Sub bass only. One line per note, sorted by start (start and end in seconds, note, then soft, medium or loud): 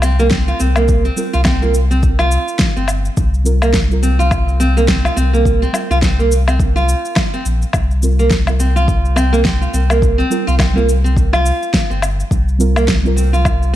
0.00 0.52 C2 loud
0.60 1.10 C2 medium
1.34 2.38 C2 medium
2.77 3.10 G1 medium
3.17 5.10 C2 medium
5.17 5.66 C2 medium
5.90 6.94 C2 medium
7.45 7.65 A#1 medium
7.74 9.67 C2 medium
9.74 10.23 C2 loud
10.48 11.52 C2 medium
11.90 12.24 G1 medium
12.31 13.76 C2 medium